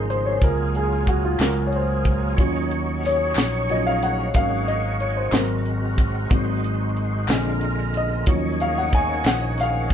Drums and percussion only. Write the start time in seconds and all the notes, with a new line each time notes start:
0.10 closed hi-hat
0.42 kick, closed hi-hat
0.75 closed hi-hat
1.07 kick, closed hi-hat
1.39 snare, clap, closed hi-hat
1.73 closed hi-hat
2.05 kick, closed hi-hat
2.38 kick, closed hi-hat
2.71 closed hi-hat
3.03 snare, closed hi-hat
3.35 snare, clap, closed hi-hat
3.69 closed hi-hat
4.02 closed hi-hat
4.34 kick, closed hi-hat
4.68 closed hi-hat
5.00 closed hi-hat
5.32 snare, clap, closed hi-hat
5.66 closed hi-hat
5.98 kick, closed hi-hat
6.31 kick, closed hi-hat
6.64 closed hi-hat
6.97 closed hi-hat
7.28 snare, clap, closed hi-hat
7.61 closed hi-hat
7.94 closed hi-hat
8.26 kick, closed hi-hat
8.60 closed hi-hat
8.93 kick, closed hi-hat
9.24 snare, clap, closed hi-hat
9.58 snare, closed hi-hat
9.90 kick